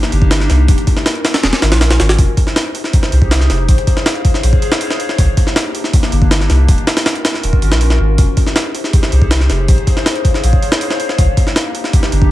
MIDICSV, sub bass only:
0, 0, Header, 1, 2, 480
1, 0, Start_track
1, 0, Key_signature, -4, "minor"
1, 0, Tempo, 375000
1, 877, Time_signature, 4, 2, 24, 8
1, 15762, End_track
2, 0, Start_track
2, 0, Title_t, "Sub bass"
2, 0, Program_c, 0, 38
2, 156, Note_on_c, 0, 31, 98
2, 617, Note_off_c, 0, 31, 0
2, 637, Note_on_c, 0, 36, 101
2, 853, Note_off_c, 0, 36, 0
2, 875, Note_on_c, 0, 27, 100
2, 985, Note_off_c, 0, 27, 0
2, 1834, Note_on_c, 0, 27, 93
2, 1944, Note_off_c, 0, 27, 0
2, 2076, Note_on_c, 0, 32, 83
2, 2197, Note_on_c, 0, 34, 92
2, 2216, Note_off_c, 0, 32, 0
2, 2537, Note_off_c, 0, 34, 0
2, 2558, Note_on_c, 0, 32, 91
2, 2773, Note_off_c, 0, 32, 0
2, 2797, Note_on_c, 0, 29, 99
2, 2905, Note_off_c, 0, 29, 0
2, 3997, Note_on_c, 0, 36, 96
2, 4458, Note_off_c, 0, 36, 0
2, 4477, Note_on_c, 0, 29, 103
2, 4693, Note_off_c, 0, 29, 0
2, 4715, Note_on_c, 0, 34, 102
2, 4825, Note_off_c, 0, 34, 0
2, 5674, Note_on_c, 0, 34, 93
2, 5784, Note_off_c, 0, 34, 0
2, 6635, Note_on_c, 0, 36, 101
2, 6745, Note_off_c, 0, 36, 0
2, 7836, Note_on_c, 0, 31, 98
2, 8297, Note_off_c, 0, 31, 0
2, 8316, Note_on_c, 0, 36, 103
2, 8532, Note_off_c, 0, 36, 0
2, 8555, Note_on_c, 0, 27, 100
2, 8665, Note_off_c, 0, 27, 0
2, 9516, Note_on_c, 0, 27, 94
2, 9625, Note_off_c, 0, 27, 0
2, 9756, Note_on_c, 0, 32, 84
2, 9878, Note_on_c, 0, 34, 88
2, 9897, Note_off_c, 0, 32, 0
2, 10218, Note_off_c, 0, 34, 0
2, 10237, Note_on_c, 0, 32, 91
2, 10453, Note_off_c, 0, 32, 0
2, 10474, Note_on_c, 0, 29, 99
2, 10584, Note_off_c, 0, 29, 0
2, 11676, Note_on_c, 0, 36, 99
2, 12137, Note_off_c, 0, 36, 0
2, 12154, Note_on_c, 0, 29, 100
2, 12371, Note_off_c, 0, 29, 0
2, 12395, Note_on_c, 0, 34, 98
2, 12505, Note_off_c, 0, 34, 0
2, 13356, Note_on_c, 0, 34, 90
2, 13465, Note_off_c, 0, 34, 0
2, 14315, Note_on_c, 0, 36, 99
2, 14425, Note_off_c, 0, 36, 0
2, 15516, Note_on_c, 0, 31, 99
2, 15762, Note_off_c, 0, 31, 0
2, 15762, End_track
0, 0, End_of_file